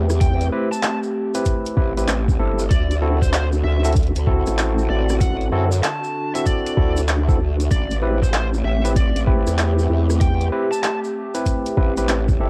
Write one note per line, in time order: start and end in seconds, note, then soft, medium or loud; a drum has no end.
0.00 0.50 E2 loud
0.00 2.67 A3 medium
0.00 0.50 C4 medium
0.00 5.17 C4 medium
0.00 0.50 E4 medium
0.00 0.49 G4 medium
0.00 2.67 G4 medium
0.00 0.50 B4 loud
0.10 cross-stick medium
0.10 shaker medium
0.21 0.44 G5 medium
0.21 kick loud
0.21 closed hi-hat medium
0.21 shaker medium
0.41 closed hi-hat soft
0.41 shaker soft
0.52 0.68 C4 medium
0.52 0.68 E4 medium
0.52 0.68 G4 medium
0.52 0.68 B4 loud
0.72 0.79 A5 medium
0.72 shaker medium
0.83 0.96 A5 medium
0.83 clap loud
0.83 closed hi-hat medium
0.83 shaker medium
1.03 shaker soft
1.34 1.75 C4 medium
1.34 1.75 E4 medium
1.34 1.75 G4 medium
1.34 1.75 B4 loud
1.34 closed hi-hat medium
1.34 shaker medium
1.45 kick medium
1.45 closed hi-hat medium
1.45 shaker medium
1.65 closed hi-hat medium
1.65 shaker soft
1.77 2.06 A1 loud
1.77 1.92 C4 medium
1.77 1.92 E4 medium
1.77 1.92 G4 medium
1.77 1.92 B4 medium
1.77 kick loud
1.97 2.14 C4 medium
1.97 2.14 E4 medium
1.97 2.14 G4 medium
1.97 2.14 B4 medium
1.97 closed hi-hat soft
1.97 shaker medium
2.08 2.38 A1 loud
2.08 clap loud
2.08 closed hi-hat medium
2.08 shaker medium
2.28 kick loud
2.28 shaker soft
2.39 2.69 G1 loud
2.39 2.62 C4 medium
2.39 2.63 E4 medium
2.39 2.63 G4 medium
2.39 2.62 A4 loud
2.59 shaker medium
2.70 3.63 D2 medium
2.70 7.67 D3 medium
2.70 7.67 F#4 medium
2.70 2.94 D5 medium
2.70 kick loud
2.70 closed hi-hat medium
2.70 shaker medium
2.91 closed hi-hat soft
2.91 shaker soft
3.02 3.18 C4 medium
3.02 3.18 E4 medium
3.02 3.18 F#4 medium
3.02 3.18 A4 loud
3.22 3.29 C5 medium
3.22 kick medium
3.22 shaker medium
3.33 3.46 C5 medium
3.33 clap loud
3.33 closed hi-hat medium
3.33 shaker medium
3.52 shaker soft
3.64 4.12 D2 loud
3.64 3.87 E5 medium
3.84 3.94 C4 medium
3.84 3.94 E4 medium
3.84 3.94 F#4 medium
3.84 3.94 A4 medium
3.84 closed hi-hat medium
3.84 closed hi-hat soft
3.84 shaker medium
3.93 kick loud
3.93 closed hi-hat soft
3.93 shaker medium
3.96 closed hi-hat medium
4.03 closed hi-hat soft
4.07 closed hi-hat soft
4.15 4.44 D2 loud
4.15 closed hi-hat medium
4.15 shaker soft
4.27 5.50 C4 loud
4.27 5.49 E4 medium
4.27 5.50 F#4 medium
4.27 5.49 A4 loud
4.27 kick loud
4.46 4.88 A1 loud
4.46 cross-stick soft
4.46 closed hi-hat soft
4.46 shaker medium
4.59 clap loud
4.59 closed hi-hat medium
4.59 shaker medium
4.78 shaker soft
4.90 5.50 A1 loud
4.90 5.13 D5 loud
5.09 cross-stick medium
5.09 shaker medium
5.20 7.68 D4 medium
5.20 5.44 F#5 medium
5.20 kick loud
5.20 closed hi-hat medium
5.20 shaker medium
5.41 closed hi-hat soft
5.41 shaker soft
5.52 5.82 F#2 loud
5.52 5.68 C4 medium
5.52 5.68 E4 medium
5.52 5.68 F#4 medium
5.52 5.68 A4 loud
5.72 shaker medium
5.83 6.31 A5 medium
5.83 clap loud
5.83 closed hi-hat medium
5.83 shaker medium
6.04 shaker soft
6.34 6.75 C4 medium
6.34 6.75 E4 medium
6.34 6.75 F#4 medium
6.34 6.75 A4 medium
6.34 6.43 E5 medium
6.34 cross-stick soft
6.34 closed hi-hat medium
6.34 shaker medium
6.46 6.97 D5 medium
6.46 kick medium
6.46 closed hi-hat medium
6.46 shaker medium
6.66 closed hi-hat medium
6.66 shaker soft
6.77 7.38 D2 loud
6.77 7.00 C4 medium
6.77 7.00 E4 medium
6.77 7.00 F#4 medium
6.77 7.00 A4 medium
6.77 kick loud
6.97 closed hi-hat soft
6.97 shaker medium
7.08 clap loud
7.08 closed hi-hat medium
7.08 shaker medium
7.28 7.38 C4 medium
7.28 7.38 E4 medium
7.28 7.38 F#4 medium
7.28 7.37 A4 medium
7.28 kick loud
7.28 shaker soft
7.39 7.69 D2 loud
7.60 closed hi-hat soft
7.60 shaker medium
7.70 8.63 A1 loud
7.70 12.50 A3 medium
7.70 12.50 C4 medium
7.70 12.50 G4 medium
7.70 7.94 D5 loud
7.70 kick loud
7.70 closed hi-hat medium
7.70 shaker medium
7.91 closed hi-hat soft
7.91 shaker soft
8.02 8.18 C4 medium
8.02 8.18 E4 medium
8.02 8.18 G4 medium
8.02 8.18 B4 loud
8.22 8.30 C5 medium
8.22 kick medium
8.22 shaker medium
8.34 8.47 C5 medium
8.34 clap loud
8.34 closed hi-hat medium
8.34 shaker medium
8.54 shaker soft
8.64 9.12 A1 loud
8.64 8.88 E5 medium
8.84 8.93 C4 medium
8.84 8.93 E4 medium
8.84 8.94 G4 medium
8.84 8.93 B4 medium
8.84 closed hi-hat soft
8.84 shaker medium
8.96 9.19 D5 loud
8.96 kick loud
8.96 closed hi-hat medium
8.96 shaker medium
9.15 9.44 A1 medium
9.15 closed hi-hat medium
9.15 shaker soft
9.27 10.50 C4 medium
9.27 10.49 E4 medium
9.27 10.49 G4 medium
9.27 10.49 B4 loud
9.27 kick loud
9.47 9.88 E2 loud
9.47 cross-stick soft
9.47 closed hi-hat soft
9.47 shaker medium
9.59 clap loud
9.59 closed hi-hat medium
9.59 shaker medium
9.79 shaker soft
9.90 10.50 E2 loud
10.10 cross-stick soft
10.10 shaker medium
10.21 10.44 G5 loud
10.21 kick loud
10.21 closed hi-hat medium
10.21 shaker medium
10.41 closed hi-hat soft
10.41 shaker soft
10.52 10.68 C4 medium
10.52 10.68 E4 medium
10.52 10.68 G4 medium
10.52 10.68 B4 loud
10.71 10.79 A5 medium
10.71 shaker medium
10.83 10.96 A5 medium
10.83 clap loud
10.83 closed hi-hat medium
10.83 shaker medium
11.04 shaker soft
11.35 11.75 C4 medium
11.35 11.75 E4 medium
11.35 11.75 G4 medium
11.35 11.75 B4 medium
11.35 closed hi-hat medium
11.35 shaker medium
11.46 kick medium
11.46 closed hi-hat medium
11.46 shaker medium
11.66 closed hi-hat medium
11.66 shaker soft
11.77 12.07 A1 loud
11.77 11.92 C4 medium
11.77 11.93 E4 medium
11.77 11.92 G4 medium
11.77 11.92 B4 medium
11.77 kick loud
11.97 12.14 C4 medium
11.97 12.14 E4 medium
11.97 12.14 G4 medium
11.97 12.14 B4 medium
11.97 closed hi-hat soft
11.97 shaker medium
12.08 12.38 A1 loud
12.08 clap loud
12.08 closed hi-hat medium
12.08 shaker medium
12.28 kick loud
12.28 shaker soft
12.39 12.50 G1 loud
12.39 12.50 C4 medium
12.39 12.50 E4 medium
12.39 12.50 G4 medium
12.39 12.50 A4 loud